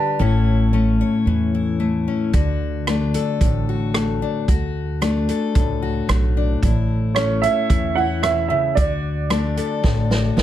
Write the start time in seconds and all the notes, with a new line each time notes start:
Already playing: D3 G3 D4 G4 B4 A5
0.19 A1 A2 A3 C#4 E4 C#5
0.73 A3 C#4
1.01 C#5
1.26 E2 E3
1.55 E4
1.80 A3
2.08 C#4
2.33 D2 D3 F#4, kick, closed hi-hat
2.87 A3 D4, cross-stick, closed hi-hat
3.14 A4, closed hi-hat
3.41 A1 A2, kick, closed hi-hat
3.69 F#4
3.94 A3, cross-stick, closed hi-hat
4.22 D4
4.48 D2 F#4, kick, closed hi-hat
5.02 A3 D4, cross-stick, closed hi-hat
5.29 A4, closed hi-hat
5.55 C#2 A2, kick, closed hi-hat
5.82 F#4
6.09 B1 A3, cross-stick, closed hi-hat
6.37 D4
6.62 A1 A2 E4, kick, closed hi-hat
7.15 A3 C#4 C#5, cross-stick, closed hi-hat
7.42 C#5 E5, closed hi-hat
7.70 E2 E3, kick, closed hi-hat
7.95 E4 F#5
8.23 B2 E5, cross-stick, closed hi-hat
8.48 C#3 E5
8.75 D2 D3 F#4 D5, kick, closed hi-hat
9.30 A3 D4, cross-stick, closed hi-hat
9.57 A4, closed hi-hat
9.83 A1 A2, kick, snare
10.11 F#4, snare
10.37 B1 A3, snare